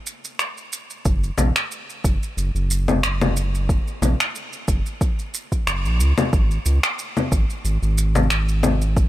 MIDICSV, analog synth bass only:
0, 0, Header, 1, 2, 480
1, 0, Start_track
1, 0, Tempo, 659341
1, 767, Time_signature, 4, 2, 24, 8
1, 6616, End_track
2, 0, Start_track
2, 0, Title_t, "Analog synth bass"
2, 0, Program_c, 0, 38
2, 768, Note_on_c, 0, 30, 99
2, 953, Note_off_c, 0, 30, 0
2, 1006, Note_on_c, 0, 34, 85
2, 1105, Note_off_c, 0, 34, 0
2, 1488, Note_on_c, 0, 30, 101
2, 1586, Note_off_c, 0, 30, 0
2, 1727, Note_on_c, 0, 30, 91
2, 1825, Note_off_c, 0, 30, 0
2, 1856, Note_on_c, 0, 30, 83
2, 2765, Note_off_c, 0, 30, 0
2, 2926, Note_on_c, 0, 34, 89
2, 3024, Note_off_c, 0, 34, 0
2, 3408, Note_on_c, 0, 30, 101
2, 3506, Note_off_c, 0, 30, 0
2, 4128, Note_on_c, 0, 30, 85
2, 4258, Note_on_c, 0, 34, 94
2, 4268, Note_off_c, 0, 30, 0
2, 4364, Note_on_c, 0, 37, 109
2, 4375, Note_off_c, 0, 34, 0
2, 4464, Note_off_c, 0, 37, 0
2, 4610, Note_on_c, 0, 32, 98
2, 4794, Note_off_c, 0, 32, 0
2, 4847, Note_on_c, 0, 37, 86
2, 4945, Note_off_c, 0, 37, 0
2, 5329, Note_on_c, 0, 32, 90
2, 5426, Note_off_c, 0, 32, 0
2, 5567, Note_on_c, 0, 32, 87
2, 5665, Note_off_c, 0, 32, 0
2, 5697, Note_on_c, 0, 32, 84
2, 6605, Note_off_c, 0, 32, 0
2, 6616, End_track
0, 0, End_of_file